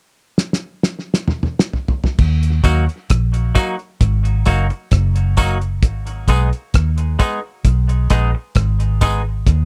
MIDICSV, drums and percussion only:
0, 0, Header, 1, 2, 480
1, 0, Start_track
1, 0, Key_signature, 5, "minor"
1, 0, Tempo, 909642
1, 1156, Time_signature, 4, 2, 24, 8
1, 5092, End_track
2, 0, Start_track
2, 0, Title_t, "Drums"
2, 200, Note_on_c, 9, 38, 60
2, 253, Note_off_c, 9, 38, 0
2, 281, Note_on_c, 9, 38, 51
2, 333, Note_off_c, 9, 38, 0
2, 440, Note_on_c, 9, 38, 61
2, 493, Note_off_c, 9, 38, 0
2, 600, Note_on_c, 9, 38, 61
2, 653, Note_off_c, 9, 38, 0
2, 673, Note_on_c, 9, 45, 81
2, 726, Note_off_c, 9, 45, 0
2, 754, Note_on_c, 9, 45, 73
2, 807, Note_off_c, 9, 45, 0
2, 841, Note_on_c, 9, 38, 89
2, 894, Note_off_c, 9, 38, 0
2, 915, Note_on_c, 9, 43, 76
2, 968, Note_off_c, 9, 43, 0
2, 994, Note_on_c, 9, 43, 95
2, 1047, Note_off_c, 9, 43, 0
2, 1074, Note_on_c, 9, 43, 90
2, 1127, Note_off_c, 9, 43, 0
2, 1154, Note_on_c, 9, 36, 119
2, 1154, Note_on_c, 9, 49, 82
2, 1207, Note_off_c, 9, 36, 0
2, 1207, Note_off_c, 9, 49, 0
2, 1281, Note_on_c, 9, 42, 55
2, 1334, Note_off_c, 9, 42, 0
2, 1391, Note_on_c, 9, 36, 76
2, 1392, Note_on_c, 9, 42, 61
2, 1394, Note_on_c, 9, 54, 57
2, 1444, Note_off_c, 9, 36, 0
2, 1445, Note_off_c, 9, 42, 0
2, 1446, Note_off_c, 9, 54, 0
2, 1525, Note_on_c, 9, 42, 33
2, 1578, Note_off_c, 9, 42, 0
2, 1634, Note_on_c, 9, 42, 94
2, 1637, Note_on_c, 9, 36, 112
2, 1642, Note_on_c, 9, 37, 94
2, 1687, Note_off_c, 9, 42, 0
2, 1690, Note_off_c, 9, 36, 0
2, 1695, Note_off_c, 9, 37, 0
2, 1761, Note_on_c, 9, 42, 60
2, 1814, Note_off_c, 9, 42, 0
2, 1874, Note_on_c, 9, 54, 64
2, 1875, Note_on_c, 9, 42, 65
2, 1877, Note_on_c, 9, 36, 97
2, 1927, Note_off_c, 9, 54, 0
2, 1928, Note_off_c, 9, 42, 0
2, 1929, Note_off_c, 9, 36, 0
2, 2000, Note_on_c, 9, 42, 29
2, 2053, Note_off_c, 9, 42, 0
2, 2115, Note_on_c, 9, 36, 108
2, 2115, Note_on_c, 9, 42, 97
2, 2167, Note_off_c, 9, 36, 0
2, 2167, Note_off_c, 9, 42, 0
2, 2243, Note_on_c, 9, 42, 43
2, 2296, Note_off_c, 9, 42, 0
2, 2351, Note_on_c, 9, 42, 89
2, 2354, Note_on_c, 9, 54, 52
2, 2357, Note_on_c, 9, 36, 84
2, 2404, Note_off_c, 9, 42, 0
2, 2407, Note_off_c, 9, 54, 0
2, 2410, Note_off_c, 9, 36, 0
2, 2481, Note_on_c, 9, 42, 31
2, 2534, Note_off_c, 9, 42, 0
2, 2592, Note_on_c, 9, 42, 88
2, 2595, Note_on_c, 9, 36, 103
2, 2600, Note_on_c, 9, 37, 93
2, 2645, Note_off_c, 9, 42, 0
2, 2647, Note_off_c, 9, 36, 0
2, 2653, Note_off_c, 9, 37, 0
2, 2721, Note_on_c, 9, 42, 52
2, 2774, Note_off_c, 9, 42, 0
2, 2832, Note_on_c, 9, 42, 74
2, 2836, Note_on_c, 9, 54, 81
2, 2837, Note_on_c, 9, 36, 91
2, 2885, Note_off_c, 9, 42, 0
2, 2888, Note_off_c, 9, 54, 0
2, 2889, Note_off_c, 9, 36, 0
2, 2963, Note_on_c, 9, 42, 36
2, 3015, Note_off_c, 9, 42, 0
2, 3074, Note_on_c, 9, 36, 127
2, 3075, Note_on_c, 9, 42, 98
2, 3127, Note_off_c, 9, 36, 0
2, 3128, Note_off_c, 9, 42, 0
2, 3201, Note_on_c, 9, 42, 51
2, 3254, Note_off_c, 9, 42, 0
2, 3312, Note_on_c, 9, 36, 71
2, 3313, Note_on_c, 9, 42, 65
2, 3313, Note_on_c, 9, 54, 51
2, 3364, Note_off_c, 9, 36, 0
2, 3366, Note_off_c, 9, 42, 0
2, 3366, Note_off_c, 9, 54, 0
2, 3444, Note_on_c, 9, 42, 35
2, 3497, Note_off_c, 9, 42, 0
2, 3556, Note_on_c, 9, 42, 103
2, 3558, Note_on_c, 9, 36, 123
2, 3564, Note_on_c, 9, 37, 98
2, 3609, Note_off_c, 9, 42, 0
2, 3611, Note_off_c, 9, 36, 0
2, 3617, Note_off_c, 9, 37, 0
2, 3682, Note_on_c, 9, 42, 62
2, 3734, Note_off_c, 9, 42, 0
2, 3796, Note_on_c, 9, 54, 64
2, 3797, Note_on_c, 9, 36, 102
2, 3798, Note_on_c, 9, 42, 70
2, 3849, Note_off_c, 9, 54, 0
2, 3850, Note_off_c, 9, 36, 0
2, 3850, Note_off_c, 9, 42, 0
2, 4035, Note_on_c, 9, 36, 107
2, 4035, Note_on_c, 9, 42, 105
2, 4087, Note_off_c, 9, 42, 0
2, 4088, Note_off_c, 9, 36, 0
2, 4164, Note_on_c, 9, 42, 44
2, 4217, Note_off_c, 9, 42, 0
2, 4273, Note_on_c, 9, 42, 84
2, 4274, Note_on_c, 9, 54, 52
2, 4278, Note_on_c, 9, 36, 92
2, 4326, Note_off_c, 9, 42, 0
2, 4326, Note_off_c, 9, 54, 0
2, 4331, Note_off_c, 9, 36, 0
2, 4511, Note_on_c, 9, 42, 83
2, 4515, Note_on_c, 9, 36, 102
2, 4520, Note_on_c, 9, 37, 101
2, 4564, Note_off_c, 9, 42, 0
2, 4568, Note_off_c, 9, 36, 0
2, 4573, Note_off_c, 9, 37, 0
2, 4643, Note_on_c, 9, 42, 51
2, 4696, Note_off_c, 9, 42, 0
2, 4755, Note_on_c, 9, 42, 71
2, 4756, Note_on_c, 9, 54, 75
2, 4758, Note_on_c, 9, 36, 89
2, 4808, Note_off_c, 9, 42, 0
2, 4809, Note_off_c, 9, 54, 0
2, 4810, Note_off_c, 9, 36, 0
2, 4995, Note_on_c, 9, 36, 112
2, 4996, Note_on_c, 9, 42, 89
2, 5048, Note_off_c, 9, 36, 0
2, 5049, Note_off_c, 9, 42, 0
2, 5092, End_track
0, 0, End_of_file